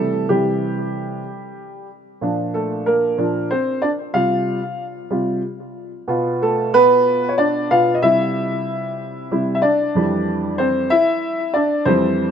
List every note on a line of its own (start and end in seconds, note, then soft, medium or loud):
0.00 0.26 C3 soft
0.00 0.26 E3 soft
0.00 0.26 G3 soft
0.00 0.25 A3 medium
0.00 0.24 A4 medium
0.29 1.22 C3 soft
0.29 1.22 E3 soft
0.29 1.87 G3 medium
0.29 1.86 G4 medium
2.21 3.17 A#2 soft
2.21 3.17 F3 soft
2.21 3.17 D4 soft
2.54 2.85 A3 soft
2.54 2.84 A4 medium
2.86 3.47 A#3 medium
2.86 3.53 A#4 medium
3.18 3.47 A#2 soft
3.18 3.47 F3 soft
3.18 3.48 D4 soft
3.51 3.81 C4 medium
3.51 3.81 C5 medium
3.82 3.90 D4 medium
3.82 3.89 D5 medium
4.14 4.57 C3 soft
4.14 4.57 G3 soft
4.14 4.58 F4 medium
4.14 4.83 F5 medium
5.11 5.40 C3 soft
5.11 5.40 G3 soft
5.11 5.40 F4 soft
6.08 7.69 B2 soft
6.08 6.72 B3 soft
6.08 7.70 F4 medium
6.41 6.71 A3 medium
6.41 6.74 A4 medium
6.74 7.26 B3 medium
6.74 7.32 B4 loud
7.29 7.36 C#5 medium
7.38 7.68 D4 medium
7.38 7.70 D5 medium
7.71 7.99 B2 soft
7.71 7.99 B3 soft
7.71 7.94 F4 medium
7.71 7.96 F5 medium
7.95 8.01 D#5 medium
8.02 9.30 C3 soft
8.02 9.30 G3 soft
8.02 9.30 E4 medium
8.02 9.53 E5 medium
9.31 9.60 C3 soft
9.31 9.59 G3 soft
9.31 9.60 E4 medium
9.55 9.62 E5 medium
9.62 10.55 D4 medium
9.62 10.61 D5 medium
9.95 10.87 F2 soft
9.95 10.87 E3 soft
9.95 10.87 G3 medium
10.58 10.89 C4 medium
10.58 10.91 C5 medium
10.90 11.51 E4 medium
10.90 11.56 E5 medium
11.54 11.85 D4 medium
11.54 11.84 D5 medium
11.85 12.29 F2 medium
11.85 12.29 E3 soft
11.85 12.29 G3 medium
11.85 12.31 C4 medium
11.85 12.31 C5 medium